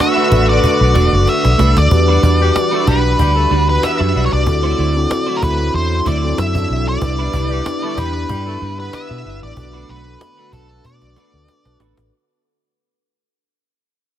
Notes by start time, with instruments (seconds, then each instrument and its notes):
Already playing: horn section D3 B3 F#4, analog synth pad D3 A3 D4 F#4, tine electric piano D4 F#4 A4 B4
0.00 lead electric guitar E5, cajon slap
0.16 clean electric guitar A3 D4 F#4 B4, cajon slap
0.31 fingered electric bass A1, clean electric guitar A3 D4 F#4 B4, tine electric piano D4 F#4 A4 B4, cajon bass
0.48 lead electric guitar D5, muted clean electric guitar stroke, cajon slap
0.64 cajon bass
0.80 fingered electric bass B1, muted clean electric guitar stroke, cajon slap
0.94 fingered electric bass E1, clean electric guitar A3 D4 F#4 D5, cajon bass
1.12 fingered electric bass F#1, muted clean electric guitar stroke, cajon slap
1.27 lead electric guitar E5, cajon slap
1.44 fingered electric bass B1, muted clean electric guitar stroke, cajon slap
1.58 fingered electric bass C2, clean electric guitar A3 D4 F#4 B4, cajon slap
1.76 fingered electric bass D2, lead electric guitar D5, muted clean electric guitar stroke, cajon slap
1.91 fingered electric bass E2, analog synth pad E3 G3 D4 F#5, tine electric piano D4 F#4 G4 B4, muted clean electric guitar stroke, cajon bass
2.08 clean electric guitar G3 D4 F#4 B4, cajon slap
2.22 fingered electric bass E2, clean electric guitar G3 D4 F#4 B4, cajon bass
2.40 horn section G3 G4, tine electric piano D4 F#4 G4 B4, muted clean electric guitar stroke
2.54 muted clean electric guitar stroke, cajon slap
2.71 clean electric guitar G3 D4 F#4 B4, horn section A3 A4
2.86 fingered electric bass B1, clean electric guitar G3 D4 F#4 B4, horn section G3 G4, tine electric piano D4 F#4 G4 B4, lead electric guitar B4, cajon bass
3.04 muted clean electric guitar stroke, cajon slap
3.19 fingered electric bass D2, horn section G3 G4, muted clean electric guitar stroke, cajon bass
3.35 horn section A3 A4, muted clean electric guitar stroke
3.50 fingered electric bass D2, clean electric guitar G3 D4 F#4 B4, cajon slap
3.67 horn section B3 B4, tine electric piano D4 F#4 G4 B4, lead electric guitar B4, muted clean electric guitar stroke, cajon slap
3.82 horn section B3 B4, lead electric guitar E5, muted clean electric guitar stroke, cajon slap
3.99 fingered electric bass F#2, clean electric guitar G3 D4 F#4 B4, tine electric piano D4 F#4 G4 B4
4.14 fingered electric bass B1, clean electric guitar G3 D4 F#4 B4, cajon slap
4.26 lead electric guitar C#5
4.32 fingered electric bass C2, lead electric guitar D5, muted clean electric guitar stroke, cajon slap
4.46 fingered electric bass D2, analog synth pad D3 F#3 D4 E4, tine electric piano C4 E4 F#4 A4, muted clean electric guitar stroke, cajon bass
4.63 clean electric guitar A3 E4 F#4 C5
4.78 fingered electric bass D2, clean electric guitar A3 E4 F#4 C5, cajon slap
4.95 tine electric piano C4 E4 F#4 A4, muted clean electric guitar stroke
5.10 muted clean electric guitar stroke, cajon slap
5.26 clean electric guitar A3 E4 F#4 C5
5.37 lead electric guitar A#4
5.41 fingered electric bass D2, clean electric guitar A3 E4 F#4 C5, tine electric piano C4 E4 F#4 A4, lead electric guitar B4, cajon bass
5.59 muted clean electric guitar stroke
5.74 fingered electric bass E2, lead electric guitar C5, muted clean electric guitar stroke, cajon slap
5.91 muted clean electric guitar stroke
6.05 fingered electric bass D2, clean electric guitar A3 E4 F#4 C5, lead electric guitar D5, cajon bass
6.23 tine electric piano C4 E4 F#4 A4, muted clean electric guitar stroke
6.37 fingered electric bass F#2, lead electric guitar E5, muted clean electric guitar stroke, cajon slap
6.55 tine electric piano C4 E4 F#4 A4, muted clean electric guitar stroke, cajon bass
6.70 fingered electric bass B1, cajon slap
6.87 lead electric guitar D5, muted clean electric guitar stroke
7.01 fingered electric bass C2, analog synth pad B3, tine electric piano D4 E4 G4 B4, muted clean electric guitar stroke, cajon bass
7.18 clean electric guitar G3 D4 E4 B4, cajon slap
7.33 fingered electric bass C2, clean electric guitar G3 D4 E4 B4, cajon bass
7.50 horn section G3 G4, tine electric piano D4 E4 G4 B4, muted clean electric guitar stroke, cajon slap
7.65 muted clean electric guitar stroke, cajon slap
7.82 clean electric guitar G3 D4 E4 B4, horn section A3 A4
7.97 fingered electric bass E2, clean electric guitar G3 D4 E4 B4, horn section G3 G4, tine electric piano D4 E4 G4 B4, lead electric guitar B4, cajon bass
8.15 muted clean electric guitar stroke
8.29 fingered electric bass G2, horn section G3 G4, muted clean electric guitar stroke, cajon bass
8.46 clean electric guitar G3 D4 E4 B4, horn section A3 A4
8.61 fingered electric bass G2, clean electric guitar G3 D4 E4 B4
8.77 horn section B3 B4, tine electric piano D4 E4 G4 B4, lead electric guitar B4, muted clean electric guitar stroke
8.92 horn section B3 B4, lead electric guitar E5, muted clean electric guitar stroke, cajon slap
9.09 fingered electric bass B2, tine electric piano D4 E4 G4 B4, muted clean electric guitar stroke
9.25 fingered electric bass G1
9.42 fingered electric bass A1, lead electric guitar D5, muted clean electric guitar stroke
9.56 fingered electric bass B1, analog synth pad D3 A3 F#4, tine electric piano D4 F#4 A4 B4, muted clean electric guitar stroke, cajon bass
9.73 clean electric guitar A3 D4 F#4 B4
9.88 fingered electric bass B1, clean electric guitar A3 D4 F#4 B4, lead electric guitar B4
10.05 tine electric piano D4 F#4 A4 B4, muted clean electric guitar stroke, cajon slap
10.21 muted clean electric guitar stroke, cajon slap
10.38 clean electric guitar A3 D4 F#4 B4, cajon slap
10.52 fingered electric bass B1, clean electric guitar A3 D4 F#4 B4, tine electric piano D4 F#4 A4 B4, lead electric guitar A4, cajon bass
10.84 fingered electric bass B2, lead electric guitar D5, muted clean electric guitar stroke, cajon bass, cajon slap
11.02 fingered electric bass B1, muted clean electric guitar stroke, cajon slap
11.16 clean electric guitar A3 D4 F#4 B4, cajon slap
11.33 fingered electric bass D2, tine electric piano D4 F#4 A4 B4, muted clean electric guitar stroke
11.48 muted clean electric guitar stroke, cajon slap
11.65 fingered electric bass B1, tine electric piano D4 F#4 A4 B4, muted clean electric guitar stroke, cajon slap
11.79 fingered electric bass A1, clean electric guitar A3 D4 F#4 B4, cajon slap
11.97 fingered electric bass A1, muted clean electric guitar stroke, cajon slap